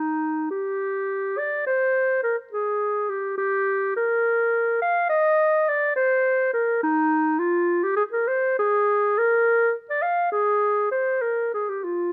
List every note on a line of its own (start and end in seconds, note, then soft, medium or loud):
0.00 0.47 D#4 medium
0.51 1.40 G4 medium
1.38 1.66 D5 medium
1.66 2.22 C5 medium
2.23 2.36 A#4 medium
2.53 3.11 G#4 medium
3.10 3.37 G4 medium
3.38 3.95 G4 medium
3.96 4.80 A#4 medium
4.82 5.09 F5 medium
5.10 5.70 D#5 medium
5.68 5.95 D5 medium
5.96 6.52 C5 medium
6.53 6.81 A#4 medium
6.83 7.41 D#4 medium
7.39 7.85 F4 medium
7.83 7.96 G4 medium
7.96 8.03 G#4 medium
8.13 8.29 A#4 medium
8.28 8.57 C5 medium
8.59 9.20 G#4 medium
9.18 9.73 A#4 medium
9.90 10.04 D5 medium
10.02 10.31 F5 medium
10.32 10.91 G#4 medium
10.91 11.23 C5 medium
11.21 11.52 A#4 medium
11.54 11.70 G#4 medium
11.69 11.85 G4 medium
11.84 12.13 F4 medium